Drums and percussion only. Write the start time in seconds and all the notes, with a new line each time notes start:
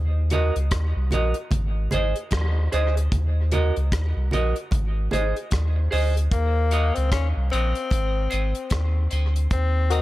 0.30 closed hi-hat, low conga
0.56 closed hi-hat
0.71 kick, cross-stick, closed hi-hat
1.11 closed hi-hat, low conga
1.34 closed hi-hat
1.51 kick, closed hi-hat, low conga
1.91 closed hi-hat, low conga
2.16 closed hi-hat
2.31 kick, cross-stick, closed hi-hat, high conga
2.72 closed hi-hat
2.97 closed hi-hat
3.12 kick, closed hi-hat, low conga
3.52 closed hi-hat, low conga
3.76 closed hi-hat
3.92 kick, cross-stick, closed hi-hat
4.31 closed hi-hat, low conga
4.56 closed hi-hat
4.71 kick, closed hi-hat, low conga
5.11 closed hi-hat, low conga
5.36 closed hi-hat
5.51 kick, cross-stick, closed hi-hat, high conga
5.92 open hi-hat
6.17 closed hi-hat
6.32 kick, closed hi-hat, low conga
6.71 closed hi-hat, low conga
6.96 closed hi-hat
7.12 kick, cross-stick, closed hi-hat
7.50 closed hi-hat, low conga
7.75 closed hi-hat
7.90 kick, closed hi-hat, low conga
8.31 closed hi-hat, low conga
8.55 closed hi-hat
8.70 kick, cross-stick, closed hi-hat, high conga
9.11 closed hi-hat
9.36 closed hi-hat
9.51 kick, closed hi-hat, low conga
9.90 closed hi-hat, low conga